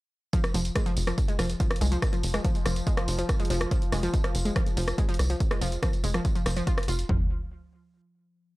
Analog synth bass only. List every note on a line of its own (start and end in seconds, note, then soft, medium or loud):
0.54 0.70 F1 loud
0.97 1.13 F1 medium
1.39 1.55 F1 medium
1.81 1.97 C2 loud
2.23 2.39 F1 medium
2.66 2.82 F1 medium
3.08 3.24 F1 loud
3.50 3.66 F1 loud
3.92 4.09 F1 loud
4.35 4.51 F1 medium
4.77 4.93 F1 medium
5.19 5.35 C2 loud
5.61 5.78 F1 medium
6.04 6.20 F1 medium
6.46 6.62 F1 loud
6.88 7.04 F1 loud
7.09 7.29 F1 loud